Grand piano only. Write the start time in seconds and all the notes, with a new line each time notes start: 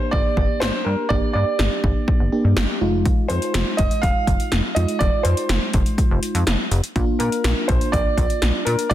Already playing: C5
0.11 D5
0.60 C5
0.84 A#4
1.09 D5
1.33 D5
3.28 C5
3.77 D#5
4.02 F5
4.75 D#5
4.99 D5
5.23 C5
7.19 A#4
7.68 C5
7.92 D5
8.65 A#4
8.90 D5